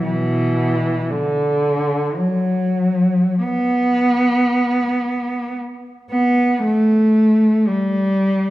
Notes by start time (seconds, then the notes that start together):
0.03 B2 E3
1.10 D3
2.18 F#3
3.44 B3
6.11 B3
6.64 A3
7.67 G3